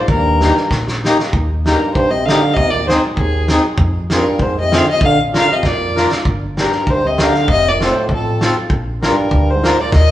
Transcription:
0.00 0.11 G#2 medium
0.08 0.49 D#2 medium
0.08 0.67 A#4 medium
0.08 kick medium
0.12 0.69 G2 medium
0.41 0.55 A#3 medium
0.41 0.55 D#4 medium
0.41 0.55 G4 medium
0.41 snare medium
0.56 snare soft
0.70 1.11 A#1 medium
0.70 kick medium
0.70 snare soft
0.88 snare soft
1.05 1.18 A#3 medium
1.05 1.18 D#4 medium
1.05 1.18 G4 medium
1.05 snare medium
1.19 snare soft
1.33 1.73 D#2 medium
1.33 kick medium
1.66 1.93 G2 medium
1.66 1.79 A#3 medium
1.66 1.79 D#4 soft
1.66 1.80 G4 medium
1.66 1.93 A#4 medium
1.66 snare medium
1.94 2.35 A#1 medium
1.94 2.11 G2 medium
1.94 2.12 C5 medium
1.94 kick medium
2.10 2.27 C3 medium
2.10 2.27 D#5 medium
2.26 2.57 D3 medium
2.26 2.42 A#3 medium
2.26 2.41 D#4 medium
2.26 2.42 G4 medium
2.26 2.56 F5 medium
2.26 snare medium
2.54 2.96 D#2 medium
2.54 2.70 C3 medium
2.54 2.72 D#5 loud
2.54 kick medium
2.69 2.85 A#2 medium
2.69 2.88 D5 medium
2.85 2.99 G#2 medium
2.85 3.01 C5 medium
2.85 snare medium
2.89 3.02 C4 medium
2.89 3.02 D#4 medium
2.89 3.02 G#4 medium
3.15 3.60 D#2 medium
3.15 3.57 D#2 medium
3.15 3.60 G#4 medium
3.15 kick medium
3.48 3.62 C4 medium
3.48 3.63 D#4 medium
3.48 3.63 G#4 medium
3.48 snare medium
3.78 4.18 F2 medium
3.78 kick medium
4.10 4.44 G2 medium
4.10 4.24 C4 medium
4.10 4.24 F4 medium
4.10 4.25 G#4 medium
4.10 4.43 A#4 medium
4.10 snare medium
4.39 4.79 F2 medium
4.39 4.58 G#2 medium
4.39 4.57 C5 medium
4.39 kick medium
4.60 4.78 C3 medium
4.60 4.78 D#5 medium
4.72 4.85 C4 medium
4.72 4.86 F4 medium
4.72 4.86 G#4 medium
4.72 4.89 F5 medium
4.72 snare medium
4.76 4.89 D3 medium
4.90 5.03 C3 medium
4.90 5.02 D#5 medium
5.01 5.41 A#1 medium
5.01 5.18 D3 medium
5.01 kick medium
5.05 5.19 F5 loud
5.33 5.47 D4 medium
5.33 5.47 F4 medium
5.33 5.47 A#4 medium
5.33 snare medium
5.38 5.53 D3 medium
5.38 5.54 F5 medium
5.51 5.68 C3 medium
5.51 5.68 D#5 medium
5.63 6.04 F2 medium
5.63 6.13 A#2 medium
5.63 6.13 D5 medium
5.63 kick medium
5.63 snare soft
5.96 6.10 D4 medium
5.96 6.09 F4 medium
5.96 6.10 A#4 medium
5.96 snare medium
6.11 snare medium
6.25 6.66 G1 medium
6.25 kick medium
6.57 6.87 G2 medium
6.57 6.72 D4 medium
6.57 6.72 G4 medium
6.57 6.72 A#4 medium
6.57 6.92 A#4 medium
6.57 snare medium
6.72 snare soft
6.87 7.27 D2 medium
6.87 7.05 G2 medium
6.87 7.08 C5 medium
6.87 kick medium
7.03 7.24 C3 medium
7.03 7.25 D#5 medium
7.18 7.50 D3 medium
7.18 7.33 D4 medium
7.18 7.33 G4 medium
7.18 7.33 A#4 medium
7.18 snare medium
7.24 7.50 F5 medium
7.34 snare soft
7.48 7.88 F1 medium
7.48 7.71 C3 medium
7.48 7.70 D#5 loud
7.48 kick medium
7.68 7.83 A#2 medium
7.68 7.83 D5 medium
7.81 7.94 C4 medium
7.81 7.94 F4 medium
7.81 7.94 A4 medium
7.81 8.10 C5 medium
7.81 snare medium
7.86 8.10 A2 medium
8.09 8.49 A1 medium
8.09 kick medium
8.14 8.56 F2 medium
8.14 8.55 A4 medium
8.41 8.55 C4 medium
8.41 8.55 F4 medium
8.41 8.55 A4 medium
8.41 snare medium
8.70 9.10 A#1 medium
8.70 kick medium
9.02 9.16 D4 medium
9.02 9.16 F4 medium
9.02 9.16 A#4 medium
9.02 snare medium
9.07 9.55 G2 medium
9.07 9.52 A#4 medium
9.31 9.71 D2 medium
9.31 kick medium
9.50 9.83 G#2 medium
9.50 9.83 C5 medium
9.64 9.77 D4 medium
9.64 9.77 F4 medium
9.64 9.77 A#4 medium
9.64 snare medium
9.81 9.94 A#2 medium
9.81 9.93 D5 medium
9.92 10.11 D#2 medium
9.92 10.11 D#5 loud
9.92 kick medium
9.92 snare soft
9.96 10.11 A#2 medium

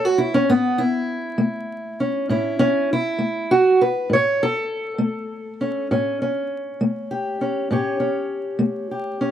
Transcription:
0.00 0.12 A3 medium
0.00 0.34 C#4 soft
0.05 0.19 F#4 medium
0.18 0.33 E4 medium
0.34 0.49 C#4 medium
0.49 1.03 A2 medium
0.49 0.79 B3 medium
0.78 1.99 E4 medium
1.38 1.92 A3 medium
2.00 2.30 C#4 soft
2.29 2.83 A2 medium
2.29 2.59 C#4 soft
2.29 2.92 E4 medium
2.59 2.89 C#4 loud
2.93 3.51 E4 medium
3.19 3.73 A3 medium
3.51 3.80 F#4 medium
3.81 4.10 B4 medium
4.10 4.63 A2 medium
4.10 4.41 C#5 medium
4.43 6.21 A4 loud
4.98 5.53 A3 medium
5.61 5.86 C#4 soft
5.91 6.44 A2 medium
5.91 6.20 C#4 soft
6.22 7.40 C#4 soft
6.81 7.34 A3 medium
7.11 7.70 G4 soft
7.41 7.70 C#4 soft
7.71 8.24 A2 medium
7.71 7.99 C#4 soft
7.71 8.90 G4 soft
7.71 9.31 C#5 soft
8.00 9.19 C#4 soft
8.59 9.12 A3 medium
8.91 9.31 G4 soft
9.21 9.31 C#4 soft

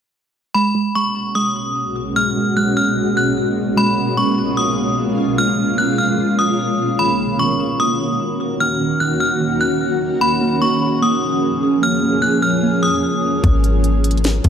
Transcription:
0.54 6.95 B2 medium
0.54 0.74 G#3 medium
0.54 6.95 G#3 medium
0.54 10.18 A#3 medium
0.54 10.18 C#4 medium
0.54 3.74 F#4 medium
0.54 0.93 B5 medium
0.75 0.94 G#3 medium
0.95 1.34 G#3 medium
0.95 1.33 C#6 medium
1.35 2.15 G#3 medium
1.35 1.73 D#6 medium
2.16 2.35 G#3 medium
2.16 2.54 F6 loud
2.36 2.56 G#3 medium
2.57 2.95 G#3 medium
2.57 2.76 F#6 medium
2.77 3.15 F6 medium
2.97 3.76 G#3 medium
3.17 3.36 F#6 medium
3.77 3.96 G#3 loud
3.77 6.96 F4 medium
3.77 4.15 B5 medium
3.97 4.16 G#3 medium
4.17 4.56 G#3 medium
4.17 4.55 C#6 medium
4.57 5.36 G#3 medium
4.57 4.95 D#6 medium
5.37 5.57 G#3 medium
5.37 5.76 F6 loud
5.58 5.77 G#3 medium
5.78 6.17 G#3 medium
5.78 5.97 F#6 medium
5.98 6.36 F6 medium
6.18 6.99 G#3 medium
6.39 6.96 D#6 medium
6.99 7.18 D#3 medium
6.99 10.18 D#3 medium
6.99 10.18 F#4 medium
6.99 7.37 B5 medium
7.19 7.38 D#3 medium
7.39 7.78 D#3 medium
7.39 7.77 C#6 medium
7.79 8.59 D#3 medium
7.79 8.18 D#6 medium
8.60 8.80 D#3 medium
8.60 8.98 F6 loud
8.81 9.00 D#3 medium
9.00 9.40 D#3 medium
9.00 9.20 F#6 medium
9.20 9.58 F6 medium
9.41 10.21 D#3 medium
9.61 9.80 F#6 medium
10.21 13.40 F3 medium
10.21 10.40 A#3 medium
10.21 13.40 A#3 medium
10.21 13.40 C#4 medium
10.21 13.40 G#4 medium
10.21 10.59 B5 loud
10.42 10.60 A#3 medium
10.61 11.01 A#3 medium
10.61 11.00 C#6 medium
11.02 11.80 A#3 medium
11.02 11.40 D#6 medium
11.82 12.01 A#3 medium
11.82 12.21 F6 loud
12.02 12.21 A#3 medium
12.22 12.62 A#3 medium
12.22 12.42 F#6 medium
12.42 12.81 F6 medium
12.63 13.44 A#3 medium
12.83 13.40 D#6 medium
13.44 14.40 G#1 loud
13.44 14.49 F#3 medium
13.44 14.49 B3 medium
13.44 14.49 C#4 medium
13.44 14.49 A#4 medium
13.44 kick loud
13.44 closed hi-hat medium
13.64 closed hi-hat medium
13.84 closed hi-hat medium
14.04 closed hi-hat medium
14.11 closed hi-hat medium
14.17 closed hi-hat soft
14.24 snare loud
14.24 closed hi-hat medium
14.44 14.49 G#1 loud
14.44 kick loud
14.44 closed hi-hat medium

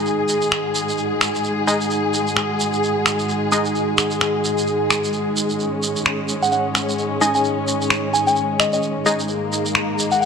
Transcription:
0.00 10.25 G#2 medium
0.00 1.65 G#3 medium
0.00 10.25 G#3 medium
0.00 1.65 D#4 medium
0.00 10.25 D#4 medium
0.00 1.65 G#4 medium
0.00 5.58 G#4 medium
0.00 10.25 G#4 medium
0.00 1.65 D#5 medium
0.00 5.96 F#5 medium
0.06 shekere soft
0.29 shekere medium
0.42 shekere soft
0.51 finger snap medium
0.51 shekere soft
0.75 shekere medium
0.89 shekere soft
0.98 shekere soft
1.21 finger snap medium
1.21 shekere medium
1.35 shekere soft
1.44 shekere soft
1.67 3.50 G#3 medium
1.67 3.50 D#4 medium
1.67 3.50 G#4 medium
1.67 3.50 D#5 medium
1.67 shekere medium
1.81 shekere soft
1.90 shekere soft
2.14 shekere medium
2.27 shekere soft
2.37 finger snap medium
2.37 shekere soft
2.60 shekere medium
2.73 shekere soft
2.83 shekere soft
3.06 finger snap medium
3.06 shekere medium
3.19 shekere soft
3.29 shekere soft
3.52 5.34 G#3 medium
3.52 5.34 D#4 medium
3.52 5.34 G#4 medium
3.52 5.34 D#5 medium
3.52 shekere medium
3.65 shekere soft
3.75 shekere soft
3.98 finger snap medium
3.98 shekere medium
4.11 shekere soft
4.21 finger snap medium
4.21 shekere soft
4.45 shekere medium
4.58 shekere soft
4.67 shekere soft
4.90 finger snap medium
4.90 shekere medium
5.04 shekere soft
5.13 shekere soft
5.37 shekere medium
5.50 shekere soft
5.60 9.28 C#4 medium
5.60 shekere soft
5.83 shekere medium
5.93 10.25 D#5 medium
5.93 shekere medium
6.06 finger snap medium
6.06 shekere soft
6.29 shekere medium
6.42 6.49 F#5 medium
6.42 shekere soft
6.52 6.61 F#5 medium
6.52 shekere soft
6.75 finger snap medium
6.75 shekere medium
6.89 shekere soft
6.98 shekere soft
7.21 9.04 G#3 medium
7.21 9.04 D#4 medium
7.21 9.04 G#4 medium
7.21 9.04 D#5 medium
7.21 7.30 G#5 medium
7.21 shekere medium
7.35 7.41 G#5 medium
7.35 shekere soft
7.44 shekere soft
7.68 shekere medium
7.82 shekere soft
7.90 finger snap medium
7.90 shekere soft
8.13 8.24 G#5 medium
8.13 shekere medium
8.27 8.43 G#5 medium
8.27 shekere medium
8.36 shekere soft
8.60 8.68 D#5 medium
8.60 finger snap medium
8.60 shekere medium
8.73 8.79 D#5 medium
8.73 shekere soft
8.83 shekere soft
9.06 10.25 G#3 medium
9.06 10.25 D#4 medium
9.06 10.25 G#4 medium
9.06 10.25 D#5 medium
9.06 shekere medium
9.20 shekere medium
9.28 10.25 A#3 medium
9.28 shekere soft
9.53 shekere medium
9.66 shekere medium
9.75 finger snap medium
9.75 shekere soft
9.99 shekere medium
10.12 10.18 F#5 medium
10.12 shekere soft
10.21 10.25 F#5 medium

